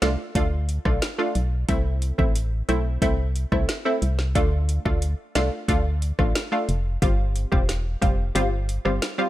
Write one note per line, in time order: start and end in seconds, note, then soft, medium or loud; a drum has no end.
0.02 0.17 C2 medium
0.02 0.15 A3 medium
0.02 0.15 D4 medium
0.02 0.15 F4 medium
0.02 snare loud
0.02 closed hi-hat medium
0.35 0.79 D2 medium
0.35 0.48 A3 medium
0.35 0.48 D4 medium
0.35 0.48 F4 loud
0.35 kick loud
0.35 closed hi-hat medium
0.69 closed hi-hat medium
0.85 1.00 B1 medium
0.85 0.98 A3 medium
0.85 0.98 D4 medium
0.85 0.98 F4 medium
0.85 kick medium
0.85 cross-stick medium
1.02 snare loud
1.02 closed hi-hat medium
1.18 1.31 A3 medium
1.18 1.31 D4 medium
1.18 1.32 F4 medium
1.35 1.65 B1 medium
1.35 closed hi-hat medium
1.69 2.13 C2 loud
1.69 2.15 A3 medium
1.69 2.15 C4 medium
1.69 2.15 E4 loud
1.69 kick loud
1.69 closed hi-hat medium
2.02 closed hi-hat medium
2.18 2.63 A1 loud
2.18 2.31 A3 medium
2.18 2.31 C4 medium
2.18 2.31 E4 medium
2.18 kick medium
2.35 closed hi-hat medium
2.69 2.98 B1 medium
2.69 2.81 A3 medium
2.69 2.81 C4 medium
2.69 2.82 E4 medium
2.69 closed hi-hat medium
3.02 3.46 C2 medium
3.02 3.15 A3 loud
3.02 3.15 C4 medium
3.02 3.15 E4 loud
3.02 kick loud
3.02 closed hi-hat medium
3.36 closed hi-hat soft
3.52 3.67 C2 loud
3.52 3.65 A3 medium
3.52 3.65 C4 medium
3.52 3.65 E4 medium
3.52 kick medium
3.52 cross-stick medium
3.69 snare loud
3.69 closed hi-hat medium
3.85 3.98 A3 medium
3.85 3.98 C4 medium
3.85 3.98 E4 medium
4.02 4.37 C2 medium
4.02 closed hi-hat medium
4.19 snare medium
4.35 4.79 D2 loud
4.35 4.81 A3 medium
4.35 4.82 D4 medium
4.35 4.82 F4 loud
4.35 kick loud
4.35 closed hi-hat medium
4.69 closed hi-hat medium
4.85 5.15 D2 loud
4.85 4.98 A3 medium
4.85 4.98 D4 medium
4.85 4.98 F4 medium
4.85 kick medium
5.02 closed hi-hat medium
5.35 5.50 C2 medium
5.35 5.48 A3 medium
5.35 5.48 D4 medium
5.35 5.48 F4 medium
5.35 snare loud
5.35 closed hi-hat medium
5.68 6.12 D2 loud
5.68 5.81 A3 medium
5.68 5.81 D4 medium
5.68 5.81 F4 loud
5.68 kick loud
5.68 closed hi-hat medium
6.02 closed hi-hat medium
6.19 6.33 A1 medium
6.19 6.31 A3 medium
6.19 6.32 D4 medium
6.19 6.32 F4 medium
6.19 kick medium
6.19 cross-stick medium
6.35 snare loud
6.35 closed hi-hat medium
6.52 6.65 A3 medium
6.52 6.65 D4 medium
6.52 6.65 F4 medium
6.69 6.98 F1 medium
6.69 closed hi-hat medium
7.02 7.46 G1 loud
7.02 7.48 G3 medium
7.02 7.48 C4 medium
7.02 7.48 F4 loud
7.02 kick loud
7.02 closed hi-hat medium
7.36 closed hi-hat medium
7.52 7.96 E1 medium
7.52 7.65 G3 medium
7.52 7.65 C4 medium
7.52 7.65 F4 medium
7.52 kick medium
7.69 snare medium
7.69 closed hi-hat medium
8.02 8.31 F1 medium
8.02 8.14 G3 medium
8.02 8.15 C4 medium
8.02 8.15 F4 medium
8.02 kick medium
8.02 closed hi-hat medium
8.35 8.79 G1 medium
8.35 8.48 G3 medium
8.35 8.48 C4 medium
8.35 8.48 F4 loud
8.35 closed hi-hat medium
8.69 closed hi-hat soft
8.85 9.00 G1 medium
8.85 8.98 G3 medium
8.85 8.98 C4 medium
8.85 8.98 F4 medium
8.85 cross-stick medium
9.02 snare loud
9.02 closed hi-hat medium
9.18 9.29 G3 medium
9.18 9.29 C4 medium
9.18 9.29 F4 medium